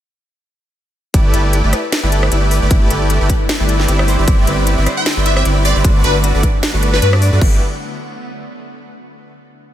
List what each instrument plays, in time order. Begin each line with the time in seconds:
1.14 sub bass G1, ambient pad D3 G3 A3 E4, supersaw synth A3 E4 G4 B4 D5, harp E4, kick, closed hi-hat
1.34 sub bass G1, supersaw synth A3 E4 G4 B4 D5, harp A4, closed hi-hat
1.53 harp E4, closed hi-hat
1.64 sub bass G1, supersaw synth A3 E4 G4 B4 D5
1.73 harp B4, cross-stick, closed hi-hat
1.92 harp E4, snare, closed hi-hat
2.03 sub bass G1, supersaw synth A3 E4 G4 B4 D5
2.12 harp A4, closed hi-hat
2.23 cross-stick
2.31 sub bass G1, supersaw synth A3 E4 G4 B4 D5, harp E4, closed hi-hat
2.51 harp B4, open hi-hat
2.62 sub bass G1, supersaw synth A3 E4 G4 B4 D5
2.71 sub bass G1, supersaw synth A3 E4 G4, harp E4, kick, closed hi-hat
2.90 sub bass G1, supersaw synth A3 E4 G4 B4 D5, harp A4, closed hi-hat
3.10 harp E4, closed hi-hat
3.21 sub bass G1, supersaw synth A3 E4 G4 B4 D5
3.30 harp B4, kick, closed hi-hat
3.49 harp E4, snare, closed hi-hat
3.60 sub bass G1, supersaw synth A3 E4 G4 B4 D5
3.69 harp A4, closed hi-hat
3.80 snare
3.88 sub bass G1, supersaw synth C4 E4 G4 B4 D5, harp E4, closed hi-hat
3.99 cross-stick
4.08 ambient pad C4, harp C5, open hi-hat
4.19 sub bass G1, supersaw synth C4 E4 G4 B4 D5
4.28 sub bass G1, supersaw synth C4 E4 G4 B4 D5, harp E4, kick, closed hi-hat
4.47 sub bass G1, supersaw synth C4 E4 G4 B4 D5, harp B4, closed hi-hat
4.67 harp E4, closed hi-hat
4.78 sub bass G1, supersaw synth C4 E4 G4 B4 D5
4.86 harp C5, cross-stick, closed hi-hat
4.97 digital synth lead G5
5.06 harp E4, snare, closed hi-hat
5.17 sub bass G1, supersaw synth C4 E4 G4 B4 D5
5.26 harp B4, digital synth lead E5, closed hi-hat
5.37 digital synth lead E5, cross-stick
5.45 sub bass G1, supersaw synth C4 E4 G4 B4 D5, harp E4, closed hi-hat
5.65 harp C5, digital synth lead D5, open hi-hat
5.76 sub bass G1, supersaw synth C4 E4 G4 B4 D5
5.84 sub bass G1, ambient pad F#3 A3 B3 F#4, supersaw synth A3 D4 F#4 B4 D5, harp F#4, kick, closed hi-hat
6.04 sub bass G1, supersaw synth A3 D4 F#4 B4 D5, harp B4, digital synth lead B4, closed hi-hat
6.24 harp F#4, closed hi-hat
6.35 sub bass G1, supersaw synth A3 D4 F#4 B4 D5
6.43 harp D5, kick, closed hi-hat
6.63 harp F#4, snare, closed hi-hat
6.74 sub bass G1, supersaw synth A3 D4 F#4 B4 D5
6.83 harp B4, closed hi-hat
6.93 digital synth lead B4, snare
7.02 sub bass G2, supersaw synth A3 D4 F#4 B4 D5, harp F#4, digital synth lead B4, closed hi-hat
7.13 cross-stick
7.22 harp D5, open hi-hat
7.33 sub bass G2, supersaw synth A3 D4 F#4 B4 D5
7.41 sub bass G1, supersaw synth A3 E4 G4 B4 D5, harp E4, kick, crash